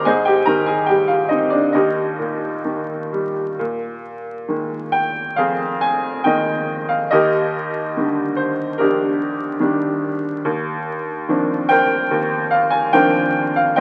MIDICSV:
0, 0, Header, 1, 2, 480
1, 0, Start_track
1, 0, Tempo, 840336
1, 34, Time_signature, 4, 2, 24, 8
1, 996, Tempo, 917431
1, 2436, Tempo, 877193
1, 3876, Tempo, 831025
1, 7732, End_track
2, 0, Start_track
2, 0, Title_t, "Upright piano"
2, 0, Program_c, 0, 0
2, 0, Control_c, 0, 64, 127
2, 29, Note_on_c, 0, 80, 73
2, 34, Note_on_c, 0, 44, 57
2, 37, Note_on_c, 0, 68, 62
2, 38, Note_on_c, 0, 72, 58
2, 39, Note_on_c, 0, 75, 58
2, 41, Control_c, 0, 64, 0
2, 139, Control_c, 0, 64, 127
2, 143, Note_off_c, 0, 68, 0
2, 143, Note_off_c, 0, 72, 0
2, 143, Note_off_c, 0, 75, 0
2, 144, Note_on_c, 0, 79, 70
2, 150, Note_off_c, 0, 80, 0
2, 157, Note_on_c, 0, 67, 54
2, 260, Note_on_c, 0, 82, 74
2, 261, Note_off_c, 0, 67, 0
2, 266, Note_off_c, 0, 79, 0
2, 268, Note_on_c, 0, 51, 41
2, 274, Note_on_c, 0, 70, 57
2, 378, Note_on_c, 0, 80, 61
2, 380, Note_off_c, 0, 70, 0
2, 384, Note_off_c, 0, 82, 0
2, 389, Note_on_c, 0, 68, 55
2, 491, Note_off_c, 0, 80, 0
2, 493, Note_on_c, 0, 79, 63
2, 498, Note_off_c, 0, 68, 0
2, 506, Note_on_c, 0, 67, 49
2, 510, Note_on_c, 0, 55, 36
2, 614, Note_on_c, 0, 77, 58
2, 617, Note_off_c, 0, 67, 0
2, 623, Note_off_c, 0, 79, 0
2, 628, Note_on_c, 0, 65, 41
2, 735, Note_on_c, 0, 75, 54
2, 740, Note_off_c, 0, 65, 0
2, 745, Note_off_c, 0, 77, 0
2, 745, Note_on_c, 0, 60, 40
2, 746, Note_on_c, 0, 63, 42
2, 855, Note_off_c, 0, 75, 0
2, 858, Note_on_c, 0, 74, 56
2, 861, Note_off_c, 0, 63, 0
2, 872, Note_on_c, 0, 62, 46
2, 972, Note_off_c, 0, 44, 0
2, 974, Note_off_c, 0, 51, 0
2, 980, Note_off_c, 0, 74, 0
2, 984, Note_off_c, 0, 55, 0
2, 986, Note_on_c, 0, 75, 55
2, 987, Note_off_c, 0, 60, 0
2, 987, Note_off_c, 0, 62, 0
2, 996, Note_on_c, 0, 39, 49
2, 996, Note_on_c, 0, 70, 40
2, 997, Note_on_c, 0, 63, 36
2, 999, Note_on_c, 0, 67, 38
2, 1003, Control_c, 0, 64, 0
2, 1095, Control_c, 0, 64, 127
2, 1229, Note_on_c, 0, 46, 40
2, 1469, Note_on_c, 0, 51, 39
2, 1694, Note_off_c, 0, 75, 0
2, 1699, Note_off_c, 0, 70, 0
2, 1700, Note_off_c, 0, 63, 0
2, 1701, Note_off_c, 0, 67, 0
2, 1718, Note_on_c, 0, 55, 35
2, 1942, Note_off_c, 0, 46, 0
2, 1943, Note_off_c, 0, 39, 0
2, 1946, Note_off_c, 0, 51, 0
2, 1955, Note_off_c, 0, 55, 0
2, 1963, Note_on_c, 0, 46, 51
2, 1970, Control_c, 0, 64, 0
2, 2053, Control_c, 0, 64, 127
2, 2430, Note_on_c, 0, 51, 35
2, 2431, Note_on_c, 0, 56, 29
2, 2433, Note_on_c, 0, 58, 37
2, 2668, Note_on_c, 0, 79, 72
2, 2821, Note_off_c, 0, 51, 0
2, 2822, Note_off_c, 0, 56, 0
2, 2823, Note_off_c, 0, 58, 0
2, 2900, Note_off_c, 0, 79, 0
2, 2910, Note_on_c, 0, 77, 72
2, 2918, Note_on_c, 0, 41, 50
2, 2924, Note_on_c, 0, 68, 55
2, 3155, Note_on_c, 0, 80, 79
2, 3167, Note_off_c, 0, 77, 0
2, 3391, Note_on_c, 0, 79, 69
2, 3397, Note_on_c, 0, 51, 39
2, 3397, Note_on_c, 0, 56, 34
2, 3401, Note_on_c, 0, 58, 41
2, 3405, Note_on_c, 0, 75, 56
2, 3406, Note_off_c, 0, 80, 0
2, 3729, Note_off_c, 0, 79, 0
2, 3744, Note_on_c, 0, 77, 70
2, 3777, Note_off_c, 0, 51, 0
2, 3777, Note_off_c, 0, 56, 0
2, 3779, Note_off_c, 0, 58, 0
2, 3851, Note_off_c, 0, 41, 0
2, 3853, Note_off_c, 0, 46, 0
2, 3854, Note_off_c, 0, 68, 0
2, 3854, Note_off_c, 0, 75, 0
2, 3860, Note_off_c, 0, 77, 0
2, 3864, Note_on_c, 0, 75, 78
2, 3871, Note_on_c, 0, 39, 52
2, 3877, Note_on_c, 0, 67, 59
2, 3879, Note_on_c, 0, 70, 60
2, 3881, Control_c, 0, 64, 0
2, 3996, Control_c, 0, 64, 127
2, 4363, Note_on_c, 0, 51, 36
2, 4363, Note_on_c, 0, 55, 33
2, 4365, Note_on_c, 0, 50, 38
2, 4591, Note_on_c, 0, 72, 60
2, 4621, Note_off_c, 0, 75, 0
2, 4741, Note_off_c, 0, 51, 0
2, 4741, Note_off_c, 0, 55, 0
2, 4743, Note_off_c, 0, 50, 0
2, 4815, Note_off_c, 0, 67, 0
2, 4816, Note_off_c, 0, 70, 0
2, 4830, Note_on_c, 0, 70, 63
2, 4837, Note_off_c, 0, 72, 0
2, 4841, Note_on_c, 0, 34, 49
2, 4846, Note_on_c, 0, 67, 45
2, 4848, Note_on_c, 0, 62, 43
2, 5301, Note_off_c, 0, 62, 0
2, 5304, Note_on_c, 0, 51, 45
2, 5310, Note_on_c, 0, 62, 49
2, 5311, Note_on_c, 0, 55, 39
2, 5523, Note_off_c, 0, 70, 0
2, 5693, Note_off_c, 0, 51, 0
2, 5697, Note_off_c, 0, 55, 0
2, 5697, Note_off_c, 0, 62, 0
2, 5767, Note_off_c, 0, 39, 0
2, 5771, Note_off_c, 0, 34, 0
2, 5774, Note_off_c, 0, 67, 0
2, 5794, Note_on_c, 0, 39, 62
2, 5799, Control_c, 0, 64, 0
2, 5911, Control_c, 0, 64, 127
2, 6278, Note_on_c, 0, 51, 43
2, 6279, Note_on_c, 0, 53, 36
2, 6279, Note_on_c, 0, 58, 38
2, 6281, Note_on_c, 0, 60, 39
2, 6282, Note_on_c, 0, 62, 49
2, 6510, Note_on_c, 0, 79, 96
2, 6519, Note_on_c, 0, 72, 62
2, 6520, Note_on_c, 0, 70, 63
2, 6658, Note_off_c, 0, 51, 0
2, 6658, Note_off_c, 0, 53, 0
2, 6659, Note_off_c, 0, 58, 0
2, 6660, Note_off_c, 0, 60, 0
2, 6660, Note_off_c, 0, 62, 0
2, 6744, Note_off_c, 0, 39, 0
2, 6753, Note_on_c, 0, 39, 57
2, 6983, Note_on_c, 0, 77, 83
2, 6999, Note_off_c, 0, 79, 0
2, 7096, Note_off_c, 0, 77, 0
2, 7097, Note_on_c, 0, 80, 77
2, 7223, Note_off_c, 0, 72, 0
2, 7225, Note_off_c, 0, 70, 0
2, 7225, Note_off_c, 0, 80, 0
2, 7227, Note_on_c, 0, 51, 41
2, 7227, Note_on_c, 0, 79, 91
2, 7228, Note_on_c, 0, 53, 44
2, 7231, Note_on_c, 0, 58, 41
2, 7232, Note_on_c, 0, 60, 41
2, 7232, Note_on_c, 0, 62, 51
2, 7232, Note_on_c, 0, 72, 56
2, 7233, Note_on_c, 0, 70, 59
2, 7592, Note_on_c, 0, 77, 74
2, 7601, Note_off_c, 0, 79, 0
2, 7616, Note_off_c, 0, 51, 0
2, 7617, Note_off_c, 0, 53, 0
2, 7618, Note_off_c, 0, 58, 0
2, 7619, Note_off_c, 0, 60, 0
2, 7619, Note_off_c, 0, 62, 0
2, 7690, Note_off_c, 0, 39, 0
2, 7693, Note_off_c, 0, 70, 0
2, 7693, Note_off_c, 0, 72, 0
2, 7705, Note_off_c, 0, 77, 0
2, 7708, Note_on_c, 0, 79, 77
2, 7713, Note_on_c, 0, 72, 58
2, 7713, Note_on_c, 0, 75, 59
2, 7720, Control_c, 0, 64, 0
2, 7732, Note_off_c, 0, 72, 0
2, 7732, Note_off_c, 0, 75, 0
2, 7732, Note_off_c, 0, 79, 0
2, 7732, End_track
0, 0, End_of_file